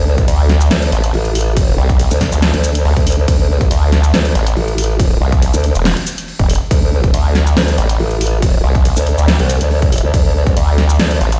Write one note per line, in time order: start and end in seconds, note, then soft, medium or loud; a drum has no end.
0.00 0.26 D2 loud
0.18 kick loud
0.18 closed hi-hat soft
0.28 0.69 D2 loud
0.28 closed hi-hat medium
0.28 crash medium
0.49 snare medium
0.49 closed hi-hat medium
0.61 shaker medium
0.71 0.91 D2 loud
0.71 snare loud
0.71 closed hi-hat medium
0.71 crash medium
0.82 closed hi-hat medium
0.92 1.12 A1 loud
0.92 closed hi-hat medium
1.04 closed hi-hat medium
1.14 1.76 A1 loud
1.14 crash medium
1.25 closed hi-hat soft
1.35 open hi-hat loud
1.41 closed hi-hat medium
1.57 kick loud
1.57 closed hi-hat medium
1.57 crash medium
1.78 2.09 C2 loud
1.89 kick loud
1.89 closed hi-hat soft
1.99 closed hi-hat medium
1.99 crash soft
2.11 2.30 D2 loud
2.11 shaker medium
2.21 kick medium
2.21 snare medium
2.21 open hi-hat medium
2.32 2.52 D2 medium
2.32 shaker medium
2.42 snare loud
2.42 closed hi-hat medium
2.42 crash medium
2.54 2.84 D2 loud
2.54 closed hi-hat medium
2.64 closed hi-hat medium
2.64 shaker medium
2.75 closed hi-hat medium
2.85 2.95 D2 loud
2.85 crash soft
2.97 3.26 D2 loud
2.97 kick loud
2.97 closed hi-hat soft
3.07 open hi-hat loud
3.12 closed hi-hat medium
3.28 3.69 D2 medium
3.28 kick loud
3.28 closed hi-hat medium
3.28 crash medium
3.61 kick loud
3.61 closed hi-hat soft
3.71 4.12 D2 loud
3.71 closed hi-hat medium
3.71 crash soft
3.92 snare medium
3.92 closed hi-hat medium
4.04 shaker medium
4.14 4.34 D2 loud
4.14 snare loud
4.14 closed hi-hat medium
4.14 crash medium
4.25 closed hi-hat medium
4.35 4.55 A1 loud
4.35 closed hi-hat medium
4.47 closed hi-hat medium
4.57 5.19 A1 loud
4.57 crash soft
4.68 closed hi-hat soft
4.78 open hi-hat loud
4.84 closed hi-hat medium
5.00 kick loud
5.00 closed hi-hat medium
5.00 crash medium
5.21 5.52 C2 loud
5.32 kick loud
5.32 closed hi-hat soft
5.42 closed hi-hat medium
5.42 crash soft
5.54 5.73 D2 medium
5.54 shaker medium
5.64 closed hi-hat medium
5.75 5.95 E1 medium
5.75 shaker soft
5.85 snare loud
5.85 closed hi-hat medium
5.85 crash medium
5.97 closed hi-hat medium
6.07 closed hi-hat medium
6.07 shaker medium
6.18 closed hi-hat medium
6.28 crash soft
6.39 6.59 E1 loud
6.39 kick loud
6.39 closed hi-hat soft
6.50 open hi-hat loud
6.55 closed hi-hat medium
6.71 7.12 D2 medium
6.71 kick loud
6.71 closed hi-hat medium
6.71 crash medium
7.04 kick loud
7.04 closed hi-hat soft
7.14 7.55 D2 loud
7.14 closed hi-hat medium
7.14 crash soft
7.35 snare medium
7.35 closed hi-hat medium
7.47 shaker medium
7.57 7.76 D2 loud
7.57 snare loud
7.57 closed hi-hat medium
7.57 crash medium
7.68 closed hi-hat medium
7.78 7.98 A1 loud
7.78 closed hi-hat medium
7.89 closed hi-hat medium
8.00 8.62 A1 loud
8.00 crash soft
8.11 closed hi-hat soft
8.21 open hi-hat loud
8.27 closed hi-hat medium
8.42 kick loud
8.42 closed hi-hat medium
8.42 crash medium
8.64 8.95 C2 loud
8.75 kick loud
8.75 closed hi-hat soft
8.85 closed hi-hat medium
8.85 crash soft
8.97 9.16 D2 medium
8.97 shaker medium
9.07 closed hi-hat medium
9.18 9.38 D2 loud
9.18 shaker medium
9.28 snare loud
9.28 closed hi-hat medium
9.28 crash medium
9.39 9.59 C2 loud
9.39 closed hi-hat medium
9.49 closed hi-hat medium
9.49 shaker medium
9.61 10.02 D2 medium
9.61 closed hi-hat medium
9.71 crash soft
9.82 kick loud
9.82 closed hi-hat soft
9.92 open hi-hat medium
9.98 closed hi-hat medium
10.04 10.12 D2 loud
10.14 10.55 D2 medium
10.14 kick loud
10.14 closed hi-hat medium
10.14 crash medium
10.47 kick loud
10.47 closed hi-hat soft
10.57 10.98 D2 loud
10.57 closed hi-hat medium
10.57 crash soft
10.78 snare medium
10.78 closed hi-hat medium
10.89 shaker medium
10.99 11.19 D2 loud
10.99 snare loud
10.99 closed hi-hat medium
10.99 crash medium
11.11 closed hi-hat medium
11.21 11.40 A1 loud
11.21 closed hi-hat medium
11.32 closed hi-hat medium